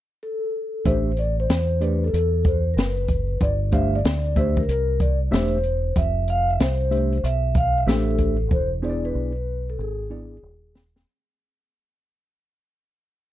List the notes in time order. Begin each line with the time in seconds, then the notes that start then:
0.23 A4
0.85 A1 A3 D4 G4 C5 E5, kick, closed hi-hat
1.17 D5, closed hi-hat
1.40 C5
1.49 E2, snare, closed hi-hat
1.81 A3 D4 G4 B4 C5 D5, closed hi-hat
2.04 A4
2.13 E2 A4, closed hi-hat
2.44 C5, kick, closed hi-hat
2.74 F#1 A#4, closed hi-hat
2.79 B4, snare
3.08 kick, closed hi-hat
3.41 G1 D5, kick, closed hi-hat
3.72 A3 D4 G4 C5 E5 F5, kick, closed hi-hat
3.96 D5
4.04 D2, snare, closed hi-hat
4.36 A3 D4 G4 C5 E5, kick, closed hi-hat
4.57 A#4, kick
4.68 C2 A#4, closed hi-hat
5.00 D5, kick, closed hi-hat
5.31 E1 A3 D4 G4 C5 E5, snare, closed hi-hat
5.64 closed hi-hat
5.96 F1 E5, kick, closed hi-hat
6.28 F5, closed hi-hat
6.50 E5
6.60 C2 C5, snare, closed hi-hat
6.91 A3 D4 G4 C5 E5, closed hi-hat
7.12 closed hi-hat
7.23 B1 E5, closed hi-hat
7.55 F5, kick, closed hi-hat
7.78 E5
7.87 A1 A3 D4 G4 A4 C5 E5, snare, closed hi-hat
8.18 kick, closed hi-hat
8.51 E1 C5, kick
8.82 B3 D4 E4 G#4 C5 D5
8.90 D5
9.05 B4
9.15 B1
9.70 A4
9.79 G#1 G#4
10.10 B3 D4 E4 G#4 D5
10.43 D#1
10.75 snare
10.96 snare